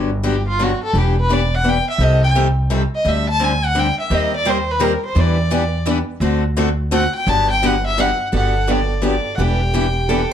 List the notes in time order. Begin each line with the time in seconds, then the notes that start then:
Already playing: G1
0.23 D3 F#3 B3 D4 G4
0.48 F4
0.59 D3 F#3 B3 D4 F#4 G4
0.83 A4
0.93 E1 E3 B3 D4 G4
1.20 B4
1.29 E3 B3 D4 G4 D5
1.55 F#5
1.64 E3 B3 D4 G4
1.69 G5
1.90 E5
1.98 C2 C3 D#3 G3 C4 G4 A4
2.03 D#5
2.24 G5
2.35 C3 D#3 G3 C4 G4 A4
2.70 C3 D#3 G3 C4 G4 A4
2.95 D#5
3.05 D2 D3 G3 C4 D4 G4
3.09 E5
3.29 A5
3.39 D3 G3 C4 D4 G4 G#5
3.65 F#5
3.75 D3 G3 C4 D4 G4
3.79 G5
4.00 E5
4.10 D#2 D#3 G3 A#3 C4 D#4 G4 A#4 C5 D#5
4.36 D5
4.45 D#3 G3 A#3 C4 D#4 G4 A#4 C5
4.71 B4
4.80 D#3 G3 A#3 C4 D#4 G4 A#4 C5
5.05 C5
5.15 E2 E3 G3 B3 D4 E4 G4 B4
5.19 D5
5.51 E3 G3 B3 D4 E4 G4 B4
5.86 E3 G3 B3 D4 E4 G4 B4
6.20 D2 D3 A3 C4 F#4 A4
6.57 D3 A3 C4 F#4 A4
6.91 D3 A3 C4 F#4 A4 F#5
7.15 G5
7.27 G1 D3 F#3 B3 D4 G4 A5
7.51 G5
7.62 D3 F#3 B3 D4 G4 F#5
7.86 E5
7.97 D3 F#3 B3 D4 G4 F#5
8.32 G1 D3 F#3 B3 D4 G4 A4 F#5
8.67 D3 F#3 B3 D4 G4 D5
9.02 D3 F#3 B3 D4 G4
9.06 D5
9.35 E1 E3 G3 B3 D4 F#5
9.39 E4 G4 B4 G5
9.74 E3 G3 B3 D4 E4 G4 B4
10.09 E3 G3 B3 D4 E4 G4 A4 B4